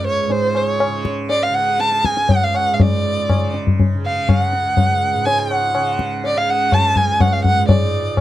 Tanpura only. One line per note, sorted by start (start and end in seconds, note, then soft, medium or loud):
0.00 2.09 C#2 medium
0.00 0.26 G#2 medium
0.00 0.88 C#3 medium
0.26 2.72 G#2 medium
0.88 1.50 C#3 medium
1.50 3.33 C#3 medium
2.09 4.55 C#2 medium
2.72 5.14 G#2 medium
3.33 3.95 C#3 medium
3.95 5.75 C#3 medium
4.55 6.95 C#2 medium
5.14 7.53 G#2 medium
5.75 6.36 C#3 medium
6.36 8.21 C#3 medium
6.95 8.21 C#2 medium
7.54 7.70 G#2 medium
7.70 8.21 G#2 medium